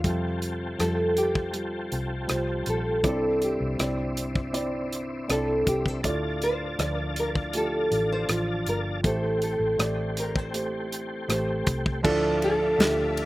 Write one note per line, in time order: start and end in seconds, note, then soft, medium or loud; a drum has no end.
0.00 0.75 G3 medium
0.00 0.38 F4 loud
0.04 0.75 F2 medium
0.04 1.13 C3 soft
0.04 3.02 F3 soft
0.04 3.02 C4 soft
0.04 0.76 F4 medium
0.04 3.02 G4 soft
0.04 0.76 A4 medium
0.04 3.02 A4 medium
0.04 kick medium
0.04 closed hi-hat medium
0.42 closed hi-hat soft
0.78 1.88 F2 medium
0.78 1.50 G3 medium
0.78 1.50 F4 soft
0.78 1.51 A4 medium
0.78 1.17 A4 medium
0.78 cross-stick medium
0.78 closed hi-hat medium
1.17 2.69 G4 medium
1.17 closed hi-hat medium
1.35 kick medium
1.53 2.25 G3 medium
1.53 2.25 F4 soft
1.53 2.25 A4 medium
1.53 closed hi-hat medium
1.92 2.27 C2 medium
1.92 closed hi-hat soft
2.27 2.65 C2 medium
2.27 3.00 G3 medium
2.27 3.00 F4 medium
2.27 3.00 C5 medium
2.27 cross-stick medium
2.27 closed hi-hat medium
2.66 3.04 A#1 medium
2.66 3.06 A4 medium
2.66 closed hi-hat medium
3.03 3.57 C2 medium
3.03 4.13 G2 medium
3.03 6.01 C3 medium
3.03 3.75 C4 medium
3.03 6.01 C4 medium
3.03 6.01 D4 medium
3.03 3.75 E4 medium
3.03 6.01 E4 medium
3.03 3.75 D5 medium
3.03 kick medium
3.03 closed hi-hat medium
3.07 3.44 A4 medium
3.42 4.89 G4 medium
3.42 closed hi-hat medium
3.60 3.78 C2 medium
3.79 5.25 C2 medium
3.79 4.50 C4 medium
3.79 4.51 E4 medium
3.79 4.51 D5 medium
3.79 cross-stick medium
3.79 closed hi-hat medium
4.17 closed hi-hat medium
4.35 kick medium
4.53 5.25 C4 medium
4.53 5.25 E4 medium
4.53 5.25 D5 medium
4.53 closed hi-hat medium
4.92 closed hi-hat medium
5.28 5.64 C2 medium
5.28 6.00 C4 medium
5.28 5.36 D4 soft
5.28 5.68 A4 medium
5.28 6.01 D5 medium
5.28 cross-stick medium
5.28 closed hi-hat medium
5.35 6.04 E4 medium
5.67 6.02 C2 medium
5.67 5.88 G4 medium
5.67 kick medium
5.67 closed hi-hat medium
5.86 6.43 A4 medium
5.86 kick medium
6.03 6.75 D2 medium
6.03 7.13 A2 medium
6.03 9.01 D3 medium
6.03 6.76 A3 medium
6.03 9.01 D4 medium
6.03 9.01 F4 medium
6.03 6.76 F4 medium
6.03 6.76 D5 medium
6.03 9.01 A5 medium
6.03 kick medium
6.03 closed hi-hat medium
6.42 6.95 C5 medium
6.42 closed hi-hat medium
6.79 7.88 D2 medium
6.79 7.50 F3 medium
6.79 7.51 F4 medium
6.79 7.51 D5 medium
6.79 cross-stick medium
6.79 closed hi-hat medium
6.95 7.14 A#4 medium
7.16 7.29 A#4 medium
7.16 closed hi-hat medium
7.35 kick medium
7.53 8.25 A3 medium
7.53 8.25 F4 medium
7.53 8.26 G4 medium
7.53 8.08 A4 medium
7.53 closed hi-hat medium
7.91 8.27 A1 medium
7.91 closed hi-hat medium
8.12 8.69 C5 medium
8.29 8.64 A1 medium
8.29 9.00 F3 medium
8.29 9.01 F4 medium
8.29 cross-stick medium
8.29 closed hi-hat medium
8.66 9.02 G1 medium
8.66 8.79 A#4 medium
8.66 closed hi-hat medium
9.03 9.57 A1 medium
9.03 10.13 A2 medium
9.03 10.13 E3 medium
9.03 9.75 A3 medium
9.03 12.01 A3 medium
9.03 12.01 C4 medium
9.03 9.75 G4 medium
9.03 12.01 G4 medium
9.03 9.42 A4 medium
9.03 9.76 C5 medium
9.03 kick medium
9.03 closed hi-hat medium
9.42 10.19 A4 medium
9.42 closed hi-hat medium
9.59 9.77 A1 medium
9.78 11.25 A1 medium
9.78 10.50 A3 medium
9.78 10.50 G4 medium
9.78 10.51 D5 medium
9.78 cross-stick medium
9.78 closed hi-hat medium
10.17 10.38 A#4 medium
10.17 closed hi-hat medium
10.36 11.68 C5 medium
10.36 kick medium
10.53 11.25 A3 medium
10.53 11.26 G4 medium
10.53 11.26 C5 medium
10.53 closed hi-hat medium
10.92 closed hi-hat medium
11.28 11.64 A1 medium
11.28 12.00 A3 medium
11.28 12.00 G4 medium
11.28 12.01 C5 medium
11.28 cross-stick medium
11.28 closed hi-hat medium
11.67 12.02 C2 medium
11.67 kick medium
11.67 closed hi-hat medium
11.86 kick medium
12.03 12.75 D2 medium
12.03 13.13 A2 medium
12.03 13.25 D3 medium
12.03 12.75 F3 loud
12.03 12.75 A3 loud
12.03 12.75 D4 loud
12.03 13.25 D4 medium
12.03 13.25 F4 medium
12.03 13.25 A4 medium
12.03 12.76 A4 loud
12.03 13.25 E5 medium
12.03 kick loud
12.03 crash medium
12.42 13.25 A4 medium
12.42 ride medium
12.79 13.25 D2 loud
12.79 13.25 F3 medium
12.79 13.25 A3 medium
12.79 13.25 D4 medium
12.79 13.25 G4 medium
12.79 snare loud
12.79 ride medium
13.17 ride medium